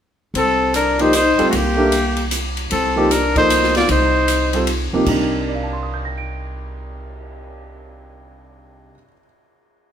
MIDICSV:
0, 0, Header, 1, 8, 480
1, 0, Start_track
1, 0, Tempo, 393701
1, 434, Time_signature, 3, 2, 24, 8
1, 12096, End_track
2, 0, Start_track
2, 0, Title_t, "Trumpet"
2, 0, Program_c, 0, 56
2, 464, Note_on_c, 0, 69, 92
2, 896, Note_off_c, 0, 69, 0
2, 922, Note_on_c, 0, 70, 79
2, 1238, Note_on_c, 0, 72, 81
2, 1257, Note_off_c, 0, 70, 0
2, 1401, Note_off_c, 0, 72, 0
2, 1415, Note_on_c, 0, 72, 89
2, 1794, Note_off_c, 0, 72, 0
2, 1834, Note_on_c, 0, 66, 53
2, 1902, Note_on_c, 0, 67, 81
2, 1920, Note_off_c, 0, 66, 0
2, 2845, Note_off_c, 0, 67, 0
2, 3315, Note_on_c, 0, 69, 78
2, 3796, Note_on_c, 0, 70, 77
2, 3814, Note_off_c, 0, 69, 0
2, 4100, Note_off_c, 0, 70, 0
2, 4121, Note_on_c, 0, 72, 87
2, 4554, Note_off_c, 0, 72, 0
2, 4591, Note_on_c, 0, 74, 87
2, 4742, Note_off_c, 0, 74, 0
2, 4769, Note_on_c, 0, 72, 91
2, 5667, Note_off_c, 0, 72, 0
2, 12096, End_track
3, 0, Start_track
3, 0, Title_t, "Grand piano"
3, 0, Program_c, 1, 0
3, 1200, Note_on_c, 1, 53, 59
3, 1214, Note_on_c, 1, 58, 52
3, 1221, Note_on_c, 1, 63, 52
3, 1227, Note_on_c, 1, 67, 63
3, 1365, Note_off_c, 1, 53, 0
3, 1372, Note_off_c, 1, 58, 0
3, 1375, Note_off_c, 1, 63, 0
3, 1378, Note_off_c, 1, 67, 0
3, 1680, Note_on_c, 1, 55, 68
3, 1689, Note_on_c, 1, 60, 61
3, 1691, Note_on_c, 1, 65, 61
3, 1697, Note_on_c, 1, 69, 75
3, 1844, Note_off_c, 1, 55, 0
3, 1849, Note_off_c, 1, 60, 0
3, 1850, Note_off_c, 1, 65, 0
3, 1853, Note_off_c, 1, 69, 0
3, 2154, Note_on_c, 1, 57, 63
3, 2165, Note_on_c, 1, 62, 56
3, 2170, Note_on_c, 1, 67, 59
3, 2177, Note_on_c, 1, 70, 66
3, 2321, Note_off_c, 1, 57, 0
3, 2326, Note_off_c, 1, 62, 0
3, 2329, Note_off_c, 1, 67, 0
3, 2332, Note_off_c, 1, 70, 0
3, 3609, Note_on_c, 1, 53, 67
3, 3616, Note_on_c, 1, 58, 58
3, 3618, Note_on_c, 1, 63, 57
3, 3625, Note_on_c, 1, 67, 74
3, 3767, Note_off_c, 1, 53, 0
3, 3770, Note_off_c, 1, 58, 0
3, 3771, Note_off_c, 1, 63, 0
3, 3774, Note_off_c, 1, 67, 0
3, 4095, Note_on_c, 1, 53, 57
3, 4099, Note_on_c, 1, 58, 54
3, 4112, Note_on_c, 1, 63, 53
3, 4115, Note_on_c, 1, 69, 64
3, 4711, Note_off_c, 1, 53, 0
3, 4713, Note_off_c, 1, 58, 0
3, 4720, Note_off_c, 1, 63, 0
3, 4721, Note_off_c, 1, 69, 0
3, 5531, Note_on_c, 1, 55, 54
3, 5540, Note_on_c, 1, 60, 50
3, 5544, Note_on_c, 1, 65, 51
3, 5554, Note_on_c, 1, 69, 63
3, 5686, Note_off_c, 1, 55, 0
3, 5691, Note_off_c, 1, 60, 0
3, 5693, Note_off_c, 1, 65, 0
3, 5698, Note_off_c, 1, 69, 0
3, 6012, Note_on_c, 1, 48, 66
3, 6019, Note_on_c, 1, 53, 61
3, 6022, Note_on_c, 1, 58, 59
3, 6025, Note_on_c, 1, 63, 58
3, 6033, Note_on_c, 1, 67, 65
3, 6160, Note_off_c, 1, 48, 0
3, 6170, Note_off_c, 1, 53, 0
3, 6172, Note_off_c, 1, 58, 0
3, 6173, Note_off_c, 1, 63, 0
3, 6177, Note_off_c, 1, 67, 0
3, 6179, Note_on_c, 1, 48, 58
3, 6182, Note_on_c, 1, 55, 54
3, 6189, Note_on_c, 1, 62, 51
3, 6200, Note_on_c, 1, 63, 53
3, 6209, Note_on_c, 1, 70, 59
3, 6686, Note_on_c, 1, 74, 40
3, 6771, Note_on_c, 1, 77, 40
3, 6870, Note_on_c, 1, 81, 37
3, 6986, Note_on_c, 1, 84, 36
3, 7107, Note_on_c, 1, 87, 35
3, 7240, Note_on_c, 1, 91, 33
3, 7376, Note_on_c, 1, 94, 31
3, 7530, Note_on_c, 1, 98, 32
3, 10859, Note_off_c, 1, 74, 0
3, 10894, Note_off_c, 1, 48, 0
3, 10896, Note_off_c, 1, 55, 0
3, 10899, Note_off_c, 1, 62, 0
3, 10902, Note_off_c, 1, 77, 0
3, 10905, Note_off_c, 1, 63, 0
3, 10909, Note_off_c, 1, 70, 0
3, 10951, Note_off_c, 1, 81, 0
3, 11009, Note_off_c, 1, 84, 0
3, 11070, Note_off_c, 1, 87, 0
3, 11136, Note_off_c, 1, 91, 0
3, 11204, Note_off_c, 1, 94, 0
3, 11281, Note_off_c, 1, 98, 0
3, 12096, End_track
4, 0, Start_track
4, 0, Title_t, "Alto saxophone"
4, 0, Program_c, 2, 65
4, 435, Note_on_c, 2, 60, 73
4, 881, Note_off_c, 2, 60, 0
4, 918, Note_on_c, 2, 62, 72
4, 1222, Note_on_c, 2, 63, 80
4, 1241, Note_off_c, 2, 62, 0
4, 1385, Note_off_c, 2, 63, 0
4, 1392, Note_on_c, 2, 63, 81
4, 1781, Note_off_c, 2, 63, 0
4, 1807, Note_on_c, 2, 57, 48
4, 1879, Note_on_c, 2, 58, 62
4, 1898, Note_off_c, 2, 57, 0
4, 2833, Note_off_c, 2, 58, 0
4, 3308, Note_on_c, 2, 60, 60
4, 3800, Note_on_c, 2, 62, 63
4, 3819, Note_off_c, 2, 60, 0
4, 4091, Note_off_c, 2, 62, 0
4, 4098, Note_on_c, 2, 63, 77
4, 4542, Note_off_c, 2, 63, 0
4, 4595, Note_on_c, 2, 65, 74
4, 4745, Note_off_c, 2, 65, 0
4, 4766, Note_on_c, 2, 63, 72
4, 5666, Note_off_c, 2, 63, 0
4, 12096, End_track
5, 0, Start_track
5, 0, Title_t, "Upright bass"
5, 0, Program_c, 3, 32
5, 412, Note_on_c, 3, 36, 69
5, 1641, Note_off_c, 3, 36, 0
5, 1868, Note_on_c, 3, 36, 74
5, 3258, Note_off_c, 3, 36, 0
5, 3314, Note_on_c, 3, 36, 72
5, 4700, Note_off_c, 3, 36, 0
5, 4743, Note_on_c, 3, 36, 80
5, 5963, Note_off_c, 3, 36, 0
5, 6014, Note_on_c, 3, 37, 64
5, 6173, Note_off_c, 3, 37, 0
5, 6178, Note_on_c, 3, 36, 75
5, 10845, Note_off_c, 3, 36, 0
5, 12096, End_track
6, 0, Start_track
6, 0, Title_t, "Cymbal swell"
6, 6486, Note_on_c, 9, 59, 39
6, 8962, Note_off_c, 9, 59, 0
6, 12096, End_track
7, 0, Start_track
7, 0, Title_t, "Muted upright bass strokes"
7, 1704, Note_on_c, 9, 29, 36
7, 1826, Note_off_c, 9, 29, 0
7, 12096, End_track
8, 0, Start_track
8, 0, Title_t, "Drums"
8, 427, Note_on_c, 9, 51, 51
8, 549, Note_off_c, 9, 51, 0
8, 902, Note_on_c, 9, 44, 48
8, 902, Note_on_c, 9, 51, 55
8, 1024, Note_off_c, 9, 44, 0
8, 1024, Note_off_c, 9, 51, 0
8, 1210, Note_on_c, 9, 51, 38
8, 1332, Note_off_c, 9, 51, 0
8, 1377, Note_on_c, 9, 44, 54
8, 1377, Note_on_c, 9, 51, 62
8, 1499, Note_off_c, 9, 44, 0
8, 1499, Note_off_c, 9, 51, 0
8, 1692, Note_on_c, 9, 51, 40
8, 1814, Note_off_c, 9, 51, 0
8, 1859, Note_on_c, 9, 51, 58
8, 1981, Note_off_c, 9, 51, 0
8, 2340, Note_on_c, 9, 44, 49
8, 2340, Note_on_c, 9, 51, 58
8, 2462, Note_off_c, 9, 44, 0
8, 2462, Note_off_c, 9, 51, 0
8, 2641, Note_on_c, 9, 51, 39
8, 2762, Note_off_c, 9, 51, 0
8, 2818, Note_on_c, 9, 44, 54
8, 2818, Note_on_c, 9, 51, 63
8, 2940, Note_off_c, 9, 44, 0
8, 2940, Note_off_c, 9, 51, 0
8, 3132, Note_on_c, 9, 51, 37
8, 3254, Note_off_c, 9, 51, 0
8, 3300, Note_on_c, 9, 51, 52
8, 3421, Note_off_c, 9, 51, 0
8, 3791, Note_on_c, 9, 44, 55
8, 3791, Note_on_c, 9, 51, 56
8, 3913, Note_off_c, 9, 44, 0
8, 3913, Note_off_c, 9, 51, 0
8, 4095, Note_on_c, 9, 36, 50
8, 4095, Note_on_c, 9, 51, 39
8, 4217, Note_off_c, 9, 36, 0
8, 4217, Note_off_c, 9, 51, 0
8, 4271, Note_on_c, 9, 44, 51
8, 4271, Note_on_c, 9, 51, 60
8, 4393, Note_off_c, 9, 44, 0
8, 4393, Note_off_c, 9, 51, 0
8, 4427, Note_on_c, 9, 38, 27
8, 4549, Note_off_c, 9, 38, 0
8, 4568, Note_on_c, 9, 51, 40
8, 4581, Note_on_c, 9, 38, 40
8, 4690, Note_off_c, 9, 51, 0
8, 4703, Note_off_c, 9, 38, 0
8, 4738, Note_on_c, 9, 51, 53
8, 4860, Note_off_c, 9, 51, 0
8, 5217, Note_on_c, 9, 44, 52
8, 5217, Note_on_c, 9, 51, 56
8, 5339, Note_off_c, 9, 44, 0
8, 5339, Note_off_c, 9, 51, 0
8, 5525, Note_on_c, 9, 51, 42
8, 5647, Note_off_c, 9, 51, 0
8, 5694, Note_on_c, 9, 51, 54
8, 5816, Note_off_c, 9, 51, 0
8, 6174, Note_on_c, 9, 49, 55
8, 6177, Note_on_c, 9, 36, 51
8, 6296, Note_off_c, 9, 49, 0
8, 6299, Note_off_c, 9, 36, 0
8, 12096, End_track
0, 0, End_of_file